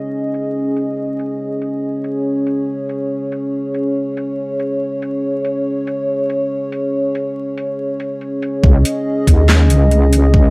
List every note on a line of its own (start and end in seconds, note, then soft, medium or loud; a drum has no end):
0.00 8.60 C#4 medium
0.00 8.60 G#4 medium
0.00 1.79 D#5 medium
0.34 closed hi-hat medium
0.77 closed hi-hat medium
1.19 closed hi-hat medium
1.62 closed hi-hat medium
1.83 8.60 C#5 medium
2.04 closed hi-hat medium
2.47 closed hi-hat medium
2.89 closed hi-hat medium
3.32 closed hi-hat medium
3.74 closed hi-hat medium
4.17 closed hi-hat medium
4.60 closed hi-hat medium
5.02 closed hi-hat medium
5.45 closed hi-hat medium
5.87 closed hi-hat medium
6.30 closed hi-hat medium
6.72 closed hi-hat medium
7.15 closed hi-hat medium
7.58 closed hi-hat medium
8.00 closed hi-hat medium
8.21 closed hi-hat soft
8.42 closed hi-hat medium
8.63 8.84 C#2 loud
8.63 10.50 C#4 medium
8.63 10.50 G#4 medium
8.63 10.50 D#5 medium
8.63 kick loud
8.85 closed hi-hat medium
9.27 9.69 D#2 loud
9.27 kick medium
9.27 closed hi-hat medium
9.49 snare loud
9.49 clap medium
9.70 10.50 C#2 medium
9.70 closed hi-hat medium
9.91 closed hi-hat soft
10.13 closed hi-hat medium
10.34 kick loud